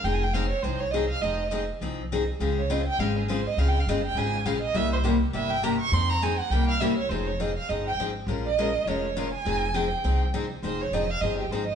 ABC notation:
X:1
M:4/4
L:1/8
Q:"Swing" 1/4=204
K:Fm
V:1 name="Violin"
(3g a g f d c d e f | e2 z6 | z d e g f A c e | (3f g f e g a2 f e |
=e c z2 e g b d' | c' b a _g =g f =e d | c d e f e g z2 | z e3 d3 a- |
a2 g3 z3 | c d e f e G c e |]
V:2 name="Steel-string acoustic guitar"
[F,CEA] z [F,CEA] z [F,CEA] z [F,CEA] z | [F,CEA] z [F,CEA] z [F,CEA] z [F,CEA] z | [D,A,CFA] z [D,A,CFA] z [D,A,CFA] z [D,A,CFA] z | [D,A,CFA] z [D,A,CFA] z [D,A,CFA] z [D,A,CFA] z |
[C,G,B,=EG] z [C,G,B,EG] z [C,G,B,EG] z [C,G,B,EG] z | [F,CEA] z [F,CEA] z [C,G,B,=EG] z [C,G,B,EG] z | [F,CEA] z [F,CEA] z [F,CEA] z [F,CEA] z | [F,A,DFB] z [F,A,DFB] z [F,A,DFB] z [F,A,DFB] z |
[F,CEA] z [F,CEA] z [F,CEA] z [F,CEA] z | [F,CEA] z [F,CEA] z [F,CEA] z [F,CEA] z |]
V:3 name="Upright bass" clef=bass
F,,,4 C,,4 | F,,,4 C,,4 | D,,4 A,,,4 | D,,2 G,,,2 A,,,2 B,,,2 |
C,,4 G,,,4 | F,,4 C,,4 | F,,,4 G,,,2 A,,,2 | B,,,4 F,,,4 |
F,,,4 C,,4 | F,,,2 F,,,2 G,,,2 A,,,2 |]